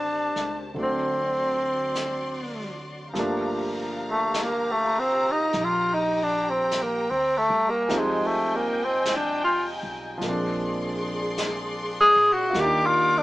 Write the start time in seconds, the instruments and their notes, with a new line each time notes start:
Already playing: upright bass A1, upright piano D#3 G3 A3 C4 G4, tenor saxophone D4, string section G4 C5 A5
0.36 upright bass C#2, snare
0.74 upright bass D2, upright piano D3 F#3 A3 C4, string section F#4 D5 C6, brush sweep
0.79 tenor saxophone C4, upright piano D4
1.95 brush sweep, snare, hi-hat pedal
3.13 upright bass G1, upright piano F3 G3 A3, string section G4 F5 A#5, brush sweep, snare
3.17 upright piano A#3 D4
4.10 tenor saxophone A3
4.34 brush sweep, snare, hi-hat pedal
4.43 tenor saxophone A#3
4.71 tenor saxophone A3
4.99 tenor saxophone C4
5.31 tenor saxophone D#4
5.53 upright bass A#1, string section G5, brush sweep, snare
5.64 tenor saxophone F4
5.94 tenor saxophone D#4
6.23 tenor saxophone D4
6.50 tenor saxophone C4
6.71 brush sweep, snare, hi-hat pedal
6.82 tenor saxophone A#3
7.10 upright bass D2, tenor saxophone C4
7.37 tenor saxophone A3
7.50 upright bass C2
7.69 tenor saxophone A#3
7.86 upright bass F1, upright piano F3 G3 G#3 C4 D#4, string section D#5 G5 G#5, brush sweep, snare
7.98 tenor saxophone G#3
8.27 tenor saxophone A3
8.55 tenor saxophone A#3
8.84 tenor saxophone C4
9.05 brush sweep, snare, hi-hat pedal
9.16 tenor saxophone D4
9.44 tenor saxophone F4
9.83 upright bass B1
10.18 upright bass A#1, upright piano F3 G#3, string section G#4, brush sweep, snare
10.22 upright piano A#3 C4, string section D5 C6
10.29 upright piano D4
11.38 brush sweep, snare, hi-hat pedal
12.01 tenor saxophone G#4
12.16 upright bass A#2
12.33 tenor saxophone F#4
12.50 upright piano G3 F4
12.54 upright bass D#2, upright piano A#3, string section G4 F5 D6, brush sweep, snare
12.58 upright piano D4 D#4, tenor saxophone G4
12.86 tenor saxophone F4
13.18 tenor saxophone D4